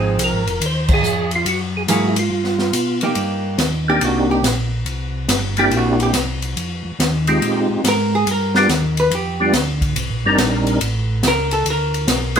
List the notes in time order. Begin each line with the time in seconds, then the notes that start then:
Already playing: G#1 F3 C4 D#4 G#4
0.19 C2, hi-hat pedal, ride
0.24 A#4
0.32 G#1
0.47 F1, ride
0.60 D#2, ride
0.66 C5
0.88 kick, crash
0.94 G#4
1.03 F2, hi-hat pedal
1.31 ride
1.36 F4
1.45 F#2 F#4, ride
1.77 G#4
1.88 G#2 F#3 A#3 E4 F#4 G#4, hi-hat pedal, ride
2.09 E4
2.16 F4, ride
2.30 G2
2.44 snare
2.59 snare
2.73 B2, hi-hat pedal, ride
3.01 A#3 D#4 G4, ride
3.15 G2, ride
3.58 D#2, snare, hi-hat pedal, ride
3.88 A#3 C4 D4 D#4 G4
4.01 C2 F#4, ride
4.31 G4
4.42 A#1, snare, hi-hat pedal, ride
4.86 C2, ride
5.28 G1, snare, hi-hat pedal, ride
5.57 A#3 C4 D4 E4 G4, ride
5.71 A#1, ride
5.77 F#4
6.00 G4, ride
6.13 C2, snare, hi-hat pedal, ride
6.42 ride
6.56 F2, ride
6.85 F2
6.99 D#2, snare, hi-hat pedal, ride
7.27 G#3 C4 D#4 F4 G4, ride
7.41 A#2, ride
7.70 A#2
7.84 G#2, snare, hi-hat pedal, ride
7.88 A#4
8.15 G#4
8.26 G2, ride
8.31 A#4
8.55 G3 B3 D4 F4 G4, snare
8.68 D#2, snare, hi-hat pedal, ride
8.97 B4, ride
9.10 F2, ride
9.15 G4
9.40 G3 B3 D4 F4 G4
9.53 D2, snare, hi-hat pedal, ride
9.81 kick, ride
9.96 C2, ride
10.10 A#1
10.24 G1 G3 C4 D4 D#4 A#4
10.38 A#1, snare, hi-hat pedal, ride
10.67 ride
10.81 A1, ride
11.23 C#2, snare, hi-hat pedal, ride
11.28 A#4
11.51 A4, ride
11.65 D2, ride
11.70 A#4
11.94 ride
12.07 B1, snare, hi-hat pedal, ride
12.35 G#3 B3, ride